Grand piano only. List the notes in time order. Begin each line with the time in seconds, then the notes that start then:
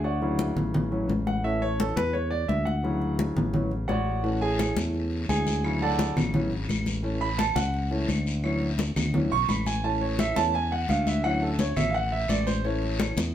0.04 F#4 C#5 D5 F#5
0.21 C#3 E3 F#3
0.91 E3 F#3 C#4
1.27 F#5
1.43 E3 A3 C#4 E5
1.62 C#5
1.79 A4
1.97 B4
2.13 C#5
2.31 D5
2.48 E5
2.65 F#5
2.83 C#3 E3 F#3
3.53 E3 F#3 C#4
3.88 F#4 C#5 D5 F#5
4.23 E3 A3 C#4
4.42 G#4 G#5
5.29 G#4 G#5
5.63 C#3 E3 F#3
5.82 A4 D5 F#5 A5
6.34 E3 F#3 C#4
7.03 E3 A3 C#4
7.21 B5
7.38 A5
7.56 F#5
7.90 E3 A3 C#4
8.43 E3 F#3 C#4
9.14 E3 F#3 C#4
9.32 C#6
9.49 B5
9.67 G#5
9.84 E3 A3 C#4 A5
10.02 C#5
10.20 E5
10.36 E3 A3 C#4 A5
10.55 G#5
10.72 F#5
10.89 F5
11.07 E5
11.23 E3 F#3 C#4 F#5
11.42 A4
11.60 C#5
11.77 E5
11.90 F5
11.95 F#5
12.12 E5
12.29 D5
12.47 C5
12.64 E3 A3 C#4 C#5